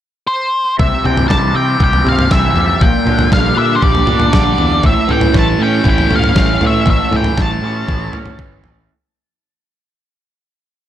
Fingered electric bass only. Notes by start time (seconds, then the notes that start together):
0.79 C2
1.04 C3
1.30 C2
1.53 C3
1.80 C2
2.04 C3
2.31 C2
2.53 F2
2.81 A#1
3.06 A#2
3.32 A#1
3.56 A#2
3.82 A#1
4.07 A#2
4.33 A#1
4.59 E2
4.84 A1
5.09 A2
5.34 A1
5.59 A2
5.85 A1
6.10 A2
6.35 A1
6.61 A2
6.87 A1
7.11 A2
7.37 A1
7.62 A2
7.88 A1
8.14 A2
8.39 G1
8.65 A1